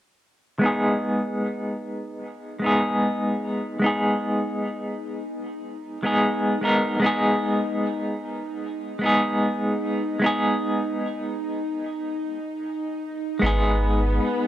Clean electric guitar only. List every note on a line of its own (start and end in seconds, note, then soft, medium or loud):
0.59 2.57 G#3 medium
0.59 2.58 B3 medium
0.64 2.59 D#4 medium
0.64 2.60 G#4 medium
2.59 3.77 G#3 medium
2.59 3.78 B3 medium
2.64 3.79 D#4 medium
2.64 3.80 G#4 medium
3.79 5.98 G#3 medium
3.79 5.99 B3 medium
3.84 6.00 D#4 medium
3.84 6.01 G#4 medium
6.03 6.58 G#3 medium
6.03 6.58 B3 medium
6.03 6.59 D#4 medium
6.03 6.59 G#4 medium
6.61 6.98 G#3 medium
6.61 6.98 B3 medium
6.61 6.99 D#4 medium
6.61 6.99 A#4 medium
7.00 8.97 G#3 medium
7.00 8.98 B3 medium
7.04 8.99 D#4 medium
7.04 9.00 G#4 medium
8.99 10.17 G#3 medium
8.99 10.18 B3 medium
9.03 10.19 D#4 medium
9.03 10.20 G#4 medium
10.19 12.38 G#3 medium
10.19 12.39 B3 medium
10.24 12.40 D#4 medium
10.24 12.41 G#4 medium
13.39 14.47 G#3 medium
13.39 14.47 B3 medium
13.44 14.47 D#4 medium
13.44 14.47 G#4 medium